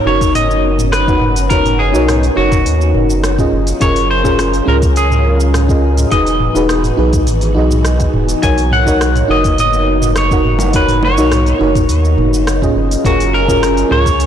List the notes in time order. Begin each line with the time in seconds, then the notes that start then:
Already playing: B3 C#4 D#4 F#4 A#4 C#5
0.06 F#1 D#4 F#4 A#4 C#5
0.21 kick, open hi-hat, cabasa
0.35 D#5, mid tom, open hi-hat, cabasa
0.51 cabasa
0.79 mid tom, cabasa
0.92 B4, cross-stick, open hi-hat, cabasa
1.08 D#4 F#4 B4 F#5, kick, cabasa
1.21 mid tom
1.36 open hi-hat, cabasa
1.50 D#4 F#4 A#4 C#5, kick, open hi-hat, cabasa
1.65 mid tom, open hi-hat, cabasa
1.79 G#4
1.93 B1 D#4 F#4 A#4 C#5, cabasa
2.08 cross-stick, mid tom, open hi-hat, cabasa
2.23 open hi-hat, cabasa
2.36 F#1 D#4 F#4 A#4 C#5
2.52 kick, mid tom, open hi-hat, cabasa
2.66 D#2, open hi-hat, cabasa
2.81 cabasa
2.94 F#1, mid tom
3.10 cabasa
3.24 cross-stick, open hi-hat, cabasa
3.38 C#4 F4 G#4 D#5, kick, mid tom, cabasa
3.52 F#1 F#3 C#4 F4 G#4 A#4
3.67 open hi-hat, cabasa
3.81 F#1 C#4 F4 G#4 A#4 C#5, kick, mid tom, open hi-hat, cabasa
3.96 open hi-hat, cabasa
4.11 C5
4.24 C#4 F4 G#4 A#4, kick, mid tom, cabasa
4.39 cross-stick, open hi-hat, cabasa
4.53 open hi-hat, cabasa
4.66 C#2 C#4 F4 G#4 A#4, mid tom
4.82 kick, open hi-hat, cabasa
4.96 G#4, open hi-hat, cabasa
5.11 mid tom, cabasa
5.40 cabasa
5.54 cross-stick, mid tom, open hi-hat, cabasa
5.68 C#4 F4 G#4 D#5, kick, cabasa
5.97 mid tom, open hi-hat, cabasa
6.11 E1 E3 B3 D#4 F#4 G#4 B4 D#5, kick, open hi-hat, cabasa
6.26 open hi-hat, cabasa
6.40 mid tom
6.55 E1 D#4 F#4 G#4 B4, cabasa
6.69 cross-stick, open hi-hat, cabasa
6.84 mid tom, open hi-hat, cabasa
6.97 B1 D#4 F#4 G#4 B4
7.13 kick, open hi-hat, cabasa
7.27 G#1, mid tom, open hi-hat, cabasa
7.41 open hi-hat, cabasa
7.54 B1 D#4 F#4 G#4
7.58 D#5
7.70 mid tom, cabasa
7.85 cross-stick, open hi-hat, cabasa
8.00 kick, open hi-hat, cabasa
8.13 E1, mid tom
8.28 open hi-hat, cabasa
8.42 B1 A#3 D#4 F#4 A#4 C#5 G#5, kick, open hi-hat, cabasa
8.58 open hi-hat, cabasa
8.72 F#5, mid tom
8.86 D#4 F#4 A#4 C#5, kick, cabasa
9.01 cross-stick, open hi-hat, cabasa
9.15 mid tom, open hi-hat, cabasa
9.28 F#1 D#4 F#4 A#4 D#5
9.32 C#5
9.44 kick, open hi-hat, cabasa
9.58 D#5, mid tom, open hi-hat, cabasa
9.73 cabasa
10.02 mid tom, cabasa
10.16 C#5, cross-stick, open hi-hat, cabasa
10.31 D#4 F#4 A#4 F#5, kick, cabasa
10.45 mid tom
10.59 open hi-hat, high bongo, cabasa
10.73 D#4 F#4 A#4 B4 C#5, kick, open hi-hat, cabasa
10.88 mid tom, open hi-hat, cabasa
11.03 C#5, high bongo
11.17 B1 D#4 F#4 A#4 C#5, cabasa
11.32 cross-stick, mid tom, open hi-hat, cabasa
11.46 open hi-hat, cabasa
11.59 F#1 D#4 F#4 A#4, high bongo
11.63 C#5
11.75 kick, mid tom, open hi-hat, cabasa
11.89 D#2, open hi-hat, cabasa
12.05 cabasa
12.17 F#1, mid tom
12.34 cabasa
12.47 cross-stick, open hi-hat, cabasa
12.62 C#4 F4 G#4 D#5, kick, mid tom, cabasa
12.75 F#1 F#3 C#4 F4 G#4 A#4
12.91 open hi-hat, cabasa
13.04 F#1 C#4 F4 F#4 G#4 A#4, kick, mid tom, open hi-hat, cabasa
13.20 open hi-hat, cabasa
13.34 A#4
13.48 C#4 F4 G#4 A#4, kick, mid tom, cabasa
13.63 cross-stick, open hi-hat, cabasa
13.77 open hi-hat, cabasa
13.89 C#2 C#4 F4 G#4 A#4 C#5, mid tom
14.06 kick, open hi-hat, cabasa
14.20 open hi-hat, cabasa